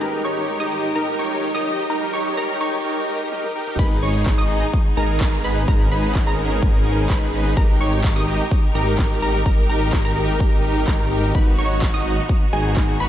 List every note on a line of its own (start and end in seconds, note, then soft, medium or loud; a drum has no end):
0.00 0.22 G#1 loud
0.00 2.80 G#3 medium
0.00 0.22 D#4 medium
0.00 2.82 D#4 medium
0.00 0.22 G4 medium
0.00 2.82 G4 medium
0.00 2.82 A#4 medium
0.00 0.22 A#4 medium
0.00 0.22 A#5 medium
0.00 closed hi-hat medium
0.00 riser medium
0.13 closed hi-hat soft
0.25 0.58 G#1 loud
0.25 0.57 D#4 medium
0.25 0.57 G4 medium
0.25 0.57 C#5 medium
0.25 0.57 C#6 medium
0.25 open hi-hat loud
0.36 closed hi-hat soft
0.48 closed hi-hat medium
0.60 0.93 G#1 medium
0.60 0.88 D#4 medium
0.60 0.88 G4 medium
0.60 0.88 D#5 loud
0.60 0.88 D#6 loud
0.60 closed hi-hat soft
0.72 open hi-hat loud
0.84 closed hi-hat soft
0.95 1.17 G#1 loud
0.95 1.16 D#4 medium
0.95 1.16 G4 medium
0.95 1.16 A#4 medium
0.95 1.16 A#5 medium
0.95 closed hi-hat medium
1.07 closed hi-hat soft
1.19 1.52 G#1 loud
1.19 1.52 D#4 medium
1.19 1.52 G4 medium
1.19 1.52 C#5 medium
1.19 1.52 C#6 medium
1.19 open hi-hat loud
1.31 closed hi-hat soft
1.43 closed hi-hat medium
1.54 1.88 G#1 medium
1.54 1.83 D#4 medium
1.54 1.83 G4 medium
1.54 1.83 D#5 loud
1.54 1.83 D#6 loud
1.54 closed hi-hat soft
1.66 open hi-hat loud
1.90 2.11 G#1 medium
1.90 2.11 D#4 medium
1.90 2.11 G4 medium
1.90 2.11 A#4 medium
1.90 2.11 A#5 loud
1.90 closed hi-hat medium
2.02 closed hi-hat soft
2.13 2.35 G#1 loud
2.13 2.35 D#4 medium
2.13 2.35 G4 medium
2.13 2.35 C#5 medium
2.13 2.35 C#6 loud
2.13 open hi-hat loud
2.25 closed hi-hat soft
2.37 2.58 G#1 loud
2.37 2.58 D#4 medium
2.37 2.58 G4 medium
2.37 2.58 A#4 medium
2.37 2.58 A#5 medium
2.37 closed hi-hat medium
2.49 closed hi-hat soft
2.61 2.82 G#1 loud
2.61 2.83 D#4 medium
2.61 2.83 G4 medium
2.61 2.83 C#5 loud
2.61 2.83 C#6 loud
2.61 open hi-hat loud
2.73 closed hi-hat soft
2.84 3.05 D#4 medium
2.84 3.05 G4 medium
2.84 3.05 A#4 medium
2.84 swell medium
3.08 3.29 D#4 medium
3.08 3.29 G4 medium
3.08 3.29 A#4 medium
3.32 3.52 D#4 medium
3.32 3.52 G4 medium
3.32 3.52 A#4 medium
3.32 high tom medium
3.44 high tom medium
3.55 3.76 D#4 medium
3.55 3.76 G4 medium
3.55 3.76 A#4 loud
3.67 mid tom medium
3.79 4.00 G#1 medium
3.79 11.31 G#3 medium
3.79 7.53 B3 medium
3.79 4.00 D#4 medium
3.79 5.66 D#4 medium
3.79 4.00 G#4 medium
3.79 4.00 B4 loud
3.79 4.00 B5 loud
3.79 kick loud
3.79 closed hi-hat medium
3.79 crash loud
3.91 closed hi-hat soft
4.03 4.36 G#1 medium
4.03 4.35 D#4 medium
4.03 4.35 G#4 medium
4.03 4.35 C#5 medium
4.03 4.35 C#6 loud
4.03 open hi-hat loud
4.14 closed hi-hat soft
4.26 kick loud
4.26 clap loud
4.26 closed hi-hat medium
4.38 4.64 G#1 loud
4.38 4.66 D#4 loud
4.38 4.66 G#4 medium
4.38 4.66 D#5 loud
4.38 4.66 D#6 loud
4.38 closed hi-hat soft
4.50 open hi-hat loud
4.62 closed hi-hat soft
4.73 kick loud
4.73 closed hi-hat medium
4.85 closed hi-hat soft
4.97 5.42 G#1 loud
4.97 5.42 D#4 medium
4.97 5.42 G#4 medium
4.97 5.41 A#4 loud
4.97 5.41 A#5 loud
4.97 open hi-hat loud
5.09 closed hi-hat soft
5.21 kick loud
5.21 clap loud
5.21 closed hi-hat loud
5.33 closed hi-hat soft
5.44 5.66 G#1 medium
5.44 5.62 D#4 medium
5.44 5.62 G#4 medium
5.44 5.62 B4 loud
5.44 5.62 B5 loud
5.44 open hi-hat loud
5.68 5.89 G#1 medium
5.68 7.55 C#4 medium
5.68 5.89 D#4 medium
5.68 5.89 G#4 medium
5.68 5.89 A#4 loud
5.68 5.89 A#5 loud
5.68 kick loud
5.68 closed hi-hat medium
5.80 closed hi-hat soft
5.91 6.25 G#1 loud
5.91 6.24 D#4 medium
5.91 6.24 G#4 medium
5.91 6.24 B4 medium
5.91 6.24 B5 medium
5.91 open hi-hat loud
6.03 closed hi-hat soft
6.15 kick loud
6.15 clap loud
6.15 closed hi-hat medium
6.27 7.07 G#1 loud
6.27 7.07 D#4 loud
6.27 7.07 G#4 medium
6.27 7.07 A#4 loud
6.27 7.07 A#5 loud
6.27 closed hi-hat soft
6.39 open hi-hat loud
6.51 closed hi-hat soft
6.63 kick loud
6.63 closed hi-hat medium
6.74 closed hi-hat soft
6.86 open hi-hat loud
6.98 closed hi-hat soft
7.10 7.55 G#1 loud
7.10 7.54 B5 medium
7.10 kick loud
7.10 clap loud
7.10 closed hi-hat medium
7.22 closed hi-hat soft
7.33 open hi-hat loud
7.57 7.78 G#1 medium
7.57 7.78 D#4 medium
7.57 13.09 D#4 medium
7.57 7.78 G4 medium
7.57 11.31 G4 medium
7.57 7.78 A#4 loud
7.57 11.31 A#4 medium
7.57 7.78 A#5 loud
7.57 kick loud
7.57 closed hi-hat medium
7.69 closed hi-hat soft
7.80 8.14 G#1 medium
7.80 8.13 D#4 medium
7.80 8.13 G4 medium
7.80 8.13 C#5 medium
7.80 8.13 C#6 loud
7.80 open hi-hat loud
7.93 closed hi-hat soft
8.04 kick loud
8.04 clap loud
8.04 closed hi-hat medium
8.16 8.42 G#1 loud
8.16 8.44 D#4 loud
8.16 8.44 G4 medium
8.16 8.44 D#5 loud
8.16 8.44 D#6 loud
8.16 closed hi-hat soft
8.28 open hi-hat loud
8.40 closed hi-hat soft
8.51 kick loud
8.51 closed hi-hat medium
8.63 closed hi-hat soft
8.75 9.20 G#1 loud
8.75 9.19 D#4 medium
8.75 9.20 G4 medium
8.75 9.19 A#4 loud
8.75 9.19 A#5 loud
8.75 open hi-hat loud
8.87 closed hi-hat soft
8.98 kick loud
8.98 clap loud
8.98 closed hi-hat medium
9.10 closed hi-hat soft
9.22 9.43 G#1 medium
9.22 9.40 D#4 medium
9.22 9.40 G4 medium
9.22 9.40 A#4 loud
9.22 9.40 A#5 loud
9.22 open hi-hat loud
9.46 9.67 G#1 medium
9.46 9.67 D#4 medium
9.46 9.67 G4 medium
9.46 9.67 A#4 loud
9.46 9.67 A#5 loud
9.46 kick loud
9.46 closed hi-hat medium
9.58 closed hi-hat soft
9.69 10.03 G#1 medium
9.69 10.02 D#4 medium
9.69 10.02 G4 medium
9.69 10.02 A#4 medium
9.69 10.02 A#5 medium
9.69 open hi-hat loud
9.81 closed hi-hat soft
9.93 kick loud
9.93 clap loud
9.93 closed hi-hat medium
10.05 10.85 G#1 medium
10.05 10.85 D#4 medium
10.05 10.85 G4 medium
10.05 10.85 A#4 loud
10.05 10.85 A#5 loud
10.05 closed hi-hat soft
10.17 open hi-hat loud
10.29 closed hi-hat soft
10.40 kick loud
10.40 closed hi-hat medium
10.52 closed hi-hat soft
10.64 open hi-hat loud
10.76 closed hi-hat soft
10.87 11.32 G#1 medium
10.87 11.32 D#4 medium
10.87 11.32 A#4 medium
10.87 11.32 A#5 medium
10.87 kick loud
10.87 clap loud
10.87 closed hi-hat medium
10.99 closed hi-hat soft
11.11 open hi-hat loud
11.35 11.56 G#1 loud
11.35 13.09 B3 medium
11.35 11.56 D#4 medium
11.35 13.09 F#4 medium
11.35 11.56 F#4 medium
11.35 11.56 B4 loud
11.35 11.56 B5 loud
11.35 kick loud
11.35 closed hi-hat medium
11.47 closed hi-hat soft
11.58 11.92 G#1 loud
11.58 11.91 D#4 medium
11.58 11.91 F#4 medium
11.58 11.91 C#5 loud
11.58 11.91 C#6 loud
11.58 open hi-hat loud
11.70 closed hi-hat soft
11.82 kick loud
11.82 clap loud
11.82 closed hi-hat medium
11.94 12.20 G#1 medium
11.94 12.22 D#4 loud
11.94 12.22 F#4 medium
11.94 12.22 D#5 loud
11.94 12.22 D#6 loud
11.94 closed hi-hat soft
12.06 open hi-hat loud
12.18 closed hi-hat soft
12.29 kick loud
12.29 closed hi-hat medium
12.41 closed hi-hat soft
12.53 12.98 G#1 loud
12.53 12.97 D#4 medium
12.53 12.97 F#4 medium
12.53 12.97 G#4 loud
12.53 12.97 G#5 loud
12.53 open hi-hat loud
12.65 closed hi-hat soft
12.76 kick loud
12.76 clap loud
12.76 closed hi-hat medium
12.88 closed hi-hat soft
13.00 13.09 G#1 medium
13.00 13.09 D#4 medium
13.00 13.09 F#4 medium
13.00 13.09 B4 loud
13.00 13.09 B5 loud
13.00 open hi-hat loud